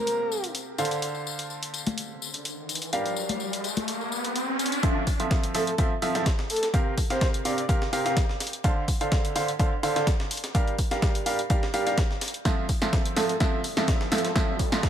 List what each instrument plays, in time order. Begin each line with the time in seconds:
Already playing: upright piano C3 C4 G4 A#4 F5, soft synth lead A#4
0.07 closed hi-hat, tambourine
0.32 tambourine
0.44 closed hi-hat, tambourine
0.55 closed hi-hat, tambourine
0.78 upright piano D3 D4 A4 C5 F5, closed hi-hat, tambourine
0.85 closed hi-hat
0.91 closed hi-hat, tambourine
1.02 closed hi-hat, tambourine, riser
1.15 tambourine
1.27 tambourine
1.39 closed hi-hat, tambourine
1.50 tambourine
1.63 closed hi-hat, tambourine
1.74 closed hi-hat, tambourine
1.87 closed hi-hat, tambourine, high conga
1.98 closed hi-hat, tambourine
2.22 tambourine
2.34 closed hi-hat, tambourine
2.45 closed hi-hat, tambourine
2.69 closed hi-hat, tambourine
2.75 closed hi-hat
2.82 closed hi-hat, tambourine
2.93 upright piano G3 D4 G4 A#4 F5, closed hi-hat, tambourine
3.06 closed hi-hat, tambourine
3.16 tambourine
3.29 closed hi-hat, tambourine, high conga
3.40 tambourine
3.53 closed hi-hat, tambourine
3.64 closed hi-hat, tambourine
3.77 closed hi-hat, tambourine, high conga
3.88 closed hi-hat, tambourine
4.01 tambourine
4.12 tambourine
4.24 closed hi-hat, tambourine
4.36 closed hi-hat, tambourine
4.59 closed hi-hat, tambourine
4.66 closed hi-hat
4.72 closed hi-hat, tambourine
4.83 upright piano F3 C4 F4 A4 E5, kick, closed hi-hat
5.07 kick, open hi-hat
5.20 upright piano F3 C4 F4 A4 E5, closed hi-hat
5.31 kick, snare, closed hi-hat
5.43 closed hi-hat
5.55 upright piano F3 C4 F4 A4 E5, soft synth lead A4, snare, closed hi-hat, open hi-hat
5.67 soft synth lead A4, closed hi-hat
5.78 upright piano F3 C4 F4 A4 E5, kick, closed hi-hat
6.02 upright piano F3 C4 F4 A4 E5, closed hi-hat, open hi-hat
6.15 upright piano F3 C4 F4 A4 E5, snare, closed hi-hat
6.26 kick, snare, closed hi-hat
6.39 snare
6.50 soft synth lead A4, closed hi-hat, open hi-hat
6.56 closed hi-hat
6.63 snare, closed hi-hat
6.74 upright piano C3 C4 G4 A#4 F5, kick, closed hi-hat
6.97 kick, closed hi-hat, open hi-hat
7.10 upright piano C3 C4 G4 A#4 F5, soft synth lead C5, snare, closed hi-hat
7.21 kick, snare, closed hi-hat
7.34 closed hi-hat
7.45 upright piano C3 C4 G4 A#4 F5, soft synth lead D5, closed hi-hat, open hi-hat
7.58 soft synth lead D5, closed hi-hat
7.69 upright piano C3 C4 G4 A#4 F5, kick, closed hi-hat
7.82 snare
7.93 upright piano C3 C4 G4 A#4 F5, closed hi-hat, open hi-hat
8.06 upright piano C3 C4 G4 A#4 F5, snare, closed hi-hat
8.17 kick, snare, closed hi-hat
8.29 snare
8.40 snare, closed hi-hat, open hi-hat
8.47 closed hi-hat
8.53 closed hi-hat
8.64 upright piano D3 D4 A4 C5 F5, kick, closed hi-hat
8.88 kick, open hi-hat
9.01 upright piano D3 D4 A4 C5 F5, closed hi-hat
9.12 kick, snare, closed hi-hat
9.25 closed hi-hat
9.36 upright piano D3 D4 A4 C5 F5, snare, closed hi-hat, open hi-hat
9.48 closed hi-hat
9.59 upright piano D3 D4 A4 C5 F5, kick, closed hi-hat
9.83 upright piano D3 D4 A4 C5 F5, closed hi-hat, open hi-hat
9.96 upright piano D3 D4 A4 C5 F5, snare, closed hi-hat
10.07 kick, snare, closed hi-hat
10.20 snare
10.31 closed hi-hat, open hi-hat
10.37 closed hi-hat
10.44 snare, closed hi-hat
10.55 upright piano G3 D4 G4 A#4 F5, kick, closed hi-hat
10.68 closed hi-hat
10.79 kick, closed hi-hat, open hi-hat
10.91 upright piano G3 D4 G4 A#4 F5, snare, closed hi-hat
11.02 kick, snare, closed hi-hat
11.15 closed hi-hat
11.26 upright piano G3 D4 G4 A#4 F5, closed hi-hat, open hi-hat
11.39 closed hi-hat
11.50 upright piano G3 D4 G4 A#4 F5, kick, closed hi-hat
11.63 snare
11.74 upright piano G3 D4 G4 A#4 F5, closed hi-hat, open hi-hat
11.87 upright piano G3 D4 G4 A#4 F5, snare, closed hi-hat
11.98 kick, snare, closed hi-hat
12.11 snare
12.21 snare, closed hi-hat, open hi-hat
12.28 closed hi-hat
12.34 closed hi-hat
12.45 upright piano F3 C4 F4 A4 E5, kick, snare, closed hi-hat, riser
12.69 kick, open hi-hat
12.82 upright piano F3 C4 F4 A4 E5, snare, closed hi-hat
12.93 kick, snare, closed hi-hat
13.05 closed hi-hat
13.17 upright piano F3 C4 F4 A4 E5, soft synth lead A4, snare, closed hi-hat, open hi-hat
13.29 soft synth lead A4, closed hi-hat
13.40 upright piano F3 C4 F4 A4 E5, kick, snare, closed hi-hat
13.64 closed hi-hat, open hi-hat
13.77 upright piano F3 C4 F4 A4 E5, snare, closed hi-hat
13.88 kick, snare, closed hi-hat
14.01 snare
14.12 upright piano F3 C4 F4 A4 E5, soft synth lead A4, snare, closed hi-hat, open hi-hat
14.18 closed hi-hat
14.25 soft synth lead A4, snare, closed hi-hat
14.35 upright piano F3 C4 F4 A4 E5, kick, snare, closed hi-hat
14.59 kick, closed hi-hat, open hi-hat
14.72 upright piano F3 C4 F4 A4 E5, snare, closed hi-hat
14.83 kick, snare, closed hi-hat